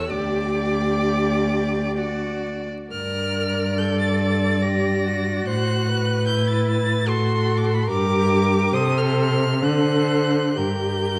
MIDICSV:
0, 0, Header, 1, 5, 480
1, 0, Start_track
1, 0, Key_signature, -2, "minor"
1, 0, Tempo, 938967
1, 50, Time_signature, 3, 2, 24, 8
1, 1490, Tempo, 849858
1, 2930, Tempo, 818554
1, 4850, Tempo, 884956
1, 5330, Tempo, 960000
1, 6115, End_track
2, 0, Start_track
2, 0, Title_t, "Violin"
2, 0, Program_c, 0, 40
2, 0, Note_on_c, 0, 88, 89
2, 50, Note_on_c, 0, 86, 98
2, 58, Note_off_c, 0, 88, 0
2, 1255, Note_off_c, 0, 86, 0
2, 1490, Note_on_c, 0, 89, 103
2, 1978, Note_on_c, 0, 91, 85
2, 1986, Note_off_c, 0, 89, 0
2, 2099, Note_off_c, 0, 91, 0
2, 2102, Note_on_c, 0, 93, 82
2, 2208, Note_off_c, 0, 93, 0
2, 2212, Note_on_c, 0, 93, 91
2, 2454, Note_on_c, 0, 94, 87
2, 2462, Note_off_c, 0, 93, 0
2, 2928, Note_off_c, 0, 94, 0
2, 2933, Note_on_c, 0, 90, 106
2, 3395, Note_off_c, 0, 90, 0
2, 3401, Note_on_c, 0, 91, 101
2, 3523, Note_on_c, 0, 93, 91
2, 3532, Note_off_c, 0, 91, 0
2, 3637, Note_off_c, 0, 93, 0
2, 3640, Note_on_c, 0, 93, 109
2, 3878, Note_on_c, 0, 84, 102
2, 3887, Note_off_c, 0, 93, 0
2, 4168, Note_on_c, 0, 86, 77
2, 4177, Note_off_c, 0, 84, 0
2, 4213, Note_on_c, 0, 84, 80
2, 4221, Note_off_c, 0, 86, 0
2, 4263, Note_on_c, 0, 83, 88
2, 4272, Note_off_c, 0, 84, 0
2, 4317, Note_on_c, 0, 84, 86
2, 4326, Note_off_c, 0, 83, 0
2, 4354, Note_off_c, 0, 84, 0
2, 4357, Note_on_c, 0, 86, 115
2, 4849, Note_on_c, 0, 87, 109
2, 4857, Note_off_c, 0, 86, 0
2, 4979, Note_on_c, 0, 89, 97
2, 4987, Note_off_c, 0, 87, 0
2, 5094, Note_off_c, 0, 89, 0
2, 5101, Note_on_c, 0, 89, 104
2, 5337, Note_on_c, 0, 90, 96
2, 5344, Note_off_c, 0, 89, 0
2, 5801, Note_on_c, 0, 91, 90
2, 5809, Note_off_c, 0, 90, 0
2, 6115, Note_off_c, 0, 91, 0
2, 6115, End_track
3, 0, Start_track
3, 0, Title_t, "Violin"
3, 0, Program_c, 1, 40
3, 0, Note_on_c, 1, 73, 77
3, 54, Note_off_c, 1, 73, 0
3, 61, Note_on_c, 1, 74, 69
3, 998, Note_off_c, 1, 74, 0
3, 1011, Note_on_c, 1, 74, 60
3, 1376, Note_off_c, 1, 74, 0
3, 1488, Note_on_c, 1, 74, 65
3, 2933, Note_on_c, 1, 72, 70
3, 2942, Note_off_c, 1, 74, 0
3, 3176, Note_on_c, 1, 71, 67
3, 3185, Note_off_c, 1, 72, 0
3, 3876, Note_on_c, 1, 69, 76
3, 3885, Note_off_c, 1, 71, 0
3, 4348, Note_off_c, 1, 69, 0
3, 4351, Note_on_c, 1, 70, 84
3, 4849, Note_on_c, 1, 72, 80
3, 4857, Note_off_c, 1, 70, 0
3, 5327, Note_off_c, 1, 72, 0
3, 5330, Note_on_c, 1, 72, 75
3, 5801, Note_on_c, 1, 70, 66
3, 5808, Note_off_c, 1, 72, 0
3, 6115, Note_off_c, 1, 70, 0
3, 6115, End_track
4, 0, Start_track
4, 0, Title_t, "Viola"
4, 0, Program_c, 2, 41
4, 51, Note_on_c, 2, 67, 72
4, 1011, Note_on_c, 2, 66, 63
4, 1018, Note_off_c, 2, 67, 0
4, 1383, Note_off_c, 2, 66, 0
4, 1493, Note_on_c, 2, 70, 61
4, 1983, Note_on_c, 2, 69, 61
4, 1991, Note_off_c, 2, 70, 0
4, 2455, Note_on_c, 2, 67, 68
4, 2463, Note_off_c, 2, 69, 0
4, 2695, Note_on_c, 2, 66, 68
4, 2703, Note_off_c, 2, 67, 0
4, 3398, Note_on_c, 2, 64, 68
4, 3407, Note_off_c, 2, 66, 0
4, 3873, Note_off_c, 2, 64, 0
4, 3877, Note_on_c, 2, 66, 77
4, 4350, Note_off_c, 2, 66, 0
4, 4356, Note_on_c, 2, 67, 78
4, 4850, Note_on_c, 2, 69, 75
4, 4858, Note_off_c, 2, 67, 0
4, 5326, Note_off_c, 2, 69, 0
4, 5330, Note_on_c, 2, 69, 77
4, 5792, Note_off_c, 2, 69, 0
4, 5798, Note_on_c, 2, 67, 64
4, 6115, Note_off_c, 2, 67, 0
4, 6115, End_track
5, 0, Start_track
5, 0, Title_t, "Cello"
5, 0, Program_c, 3, 42
5, 0, Note_on_c, 3, 40, 76
5, 55, Note_on_c, 3, 38, 76
5, 62, Note_off_c, 3, 40, 0
5, 1386, Note_off_c, 3, 38, 0
5, 1490, Note_on_c, 3, 43, 74
5, 2907, Note_off_c, 3, 43, 0
5, 2936, Note_on_c, 3, 45, 75
5, 4338, Note_off_c, 3, 45, 0
5, 4361, Note_on_c, 3, 43, 86
5, 4828, Note_off_c, 3, 43, 0
5, 4851, Note_on_c, 3, 48, 97
5, 5326, Note_on_c, 3, 50, 81
5, 5334, Note_off_c, 3, 48, 0
5, 5803, Note_on_c, 3, 43, 66
5, 5811, Note_off_c, 3, 50, 0
5, 6115, Note_off_c, 3, 43, 0
5, 6115, End_track
0, 0, End_of_file